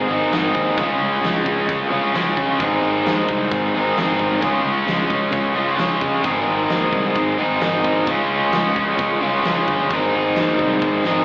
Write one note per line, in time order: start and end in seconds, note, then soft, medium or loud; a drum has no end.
0.00 0.11 G#3 medium
0.08 0.26 G#1 medium
0.08 0.31 G#2 medium
0.08 0.31 D#3 medium
0.08 0.32 G#3 medium
0.08 0.32 C4 medium
0.08 0.31 D#4 medium
0.08 0.35 G#4 medium
0.32 0.50 G#1 medium
0.32 0.77 G#2 medium
0.32 0.77 D#3 medium
0.32 0.77 G#3 medium
0.32 0.78 C4 medium
0.32 0.78 D#4 medium
0.32 0.80 G#4 medium
0.32 snare loud
0.32 closed hi-hat medium
0.55 0.72 D#2 medium
0.55 kick medium
0.77 0.95 C#2 medium
0.77 1.90 C#3 medium
0.77 1.93 G#3 medium
0.77 1.91 C#4 medium
0.77 1.90 F4 medium
0.77 1.90 G#4 medium
0.77 kick loud
0.77 closed hi-hat medium
1.02 1.18 C#2 medium
1.24 1.41 C#2 medium
1.24 snare loud
1.24 closed hi-hat medium
1.46 1.64 C#2 medium
1.46 kick medium
1.69 1.86 C#2 medium
1.69 kick loud
1.69 closed hi-hat medium
1.91 2.09 C#2 medium
1.91 2.12 C#3 medium
1.91 2.14 G#3 medium
1.91 2.14 C#4 medium
1.91 2.13 F4 medium
1.91 2.16 G#4 medium
2.13 2.33 C#2 medium
2.13 2.58 C#3 medium
2.13 2.61 G#3 medium
2.13 2.59 C#4 medium
2.13 2.59 F4 medium
2.13 2.63 G#4 medium
2.13 snare loud
2.13 closed hi-hat medium
2.37 2.55 C#3 medium
2.37 kick medium
2.60 2.78 G#1 medium
2.60 3.73 G#2 medium
2.60 3.73 D#3 medium
2.60 3.76 G#3 medium
2.60 3.74 C4 medium
2.60 3.74 D#4 medium
2.60 3.74 G#4 loud
2.60 kick loud
2.60 closed hi-hat medium
2.84 3.01 G#1 medium
3.06 3.23 D#2 medium
3.06 snare loud
3.06 closed hi-hat medium
3.29 3.46 C2 medium
3.29 kick medium
3.52 3.69 G#1 medium
3.52 kick loud
3.52 closed hi-hat medium
3.75 3.92 G#1 medium
3.75 3.96 G#2 medium
3.75 3.96 D#3 medium
3.75 3.98 G#3 medium
3.75 3.97 C4 medium
3.75 3.97 D#4 medium
3.75 4.00 G#4 medium
3.97 4.15 G#1 medium
3.97 4.41 G#2 medium
3.97 4.40 D#3 medium
3.97 4.40 G#3 medium
3.97 4.42 C4 medium
3.97 4.43 D#4 medium
3.97 4.43 G#4 medium
3.97 snare loud
3.97 closed hi-hat medium
4.19 4.37 G#1 medium
4.19 kick medium
4.41 4.60 C#2 medium
4.41 5.55 C#3 medium
4.41 5.57 G#3 medium
4.41 5.55 C#4 medium
4.41 5.55 F4 medium
4.41 5.54 G#4 medium
4.41 kick loud
4.41 closed hi-hat medium
4.65 4.83 C#2 medium
4.88 5.06 C#2 medium
4.88 snare loud
4.88 closed hi-hat medium
5.10 5.28 C#2 medium
5.10 kick medium
5.32 5.51 C#2 medium
5.32 kick loud
5.32 closed hi-hat medium
5.55 5.74 C#2 medium
5.55 5.77 G#3 medium
5.55 5.78 C#4 medium
5.55 5.78 F4 medium
5.55 5.79 G#4 medium
5.59 5.75 C#3 medium
5.76 6.22 C#3 medium
5.76 6.24 G#3 medium
5.76 6.24 C#4 medium
5.76 6.24 F4 medium
5.76 6.26 G#4 medium
5.76 snare loud
5.76 closed hi-hat medium
5.80 5.97 C#2 medium
6.01 6.19 C#3 medium
6.01 kick medium
6.22 6.42 G#1 medium
6.22 7.37 G#2 medium
6.22 7.38 D#3 medium
6.22 7.39 G#3 medium
6.22 7.38 C4 medium
6.22 7.37 D#4 medium
6.22 7.37 G#4 medium
6.22 kick loud
6.22 closed hi-hat medium
6.49 6.66 G#1 medium
6.70 6.89 D#2 medium
6.70 snare loud
6.70 closed hi-hat medium
6.93 7.10 C2 medium
6.93 kick medium
7.16 7.33 G#1 medium
7.16 kick loud
7.16 closed hi-hat medium
7.38 7.57 G#1 medium
7.38 7.59 G#2 medium
7.38 7.60 D#3 medium
7.38 7.62 G#3 medium
7.38 7.61 C4 medium
7.38 7.61 D#4 medium
7.38 7.64 G#4 medium
7.60 7.80 G#1 medium
7.60 8.06 G#2 medium
7.60 8.06 D#3 medium
7.60 8.08 G#3 medium
7.60 8.07 C4 medium
7.60 8.07 D#4 medium
7.60 snare loud
7.60 closed hi-hat medium
7.64 8.11 G#4 medium
7.84 8.02 G#1 medium
7.84 kick medium
8.06 8.25 C#2 medium
8.06 9.21 C#3 medium
8.06 9.24 G#3 medium
8.06 9.22 C#4 medium
8.06 kick loud
8.06 closed hi-hat medium
8.10 9.22 F4 medium
8.10 9.21 G#4 medium
8.34 8.50 C#2 medium
8.52 8.72 C#2 medium
8.52 snare loud
8.52 closed hi-hat medium
8.76 8.94 C#2 medium
8.76 kick medium
8.98 9.17 C#2 medium
8.98 kick loud
8.98 closed hi-hat medium
9.21 9.40 C#2 medium
9.21 9.44 C#3 medium
9.21 9.46 G#3 medium
9.21 9.45 C#4 medium
9.21 9.44 F4 medium
9.21 9.49 G#4 medium
9.45 9.63 C#2 medium
9.45 9.90 C#3 medium
9.45 9.93 G#3 medium
9.45 9.91 C#4 medium
9.45 9.91 F4 medium
9.45 snare loud
9.45 closed hi-hat medium
9.49 9.95 G#4 medium
9.68 9.85 G1 medium
9.68 kick medium
9.90 10.08 G#1 medium
9.90 11.04 G#2 medium
9.90 11.05 D#3 medium
9.90 11.05 G#3 medium
9.90 11.05 C4 medium
9.90 kick loud
9.90 closed hi-hat medium
9.95 11.05 D#4 medium
9.95 11.04 G#4 medium
10.16 10.32 G#1 medium
10.36 10.55 D#2 medium
10.36 snare loud
10.36 closed hi-hat medium
10.59 10.76 C2 medium
10.59 kick medium
10.82 10.99 G#1 medium
10.82 kick loud
11.04 11.23 G#1 medium
11.04 11.25 G#3 medium
11.04 11.25 C4 medium
11.04 11.25 D#4 medium
11.04 11.25 G#4 medium
11.04 snare medium
11.08 11.25 G#2 medium
11.08 11.25 D#3 medium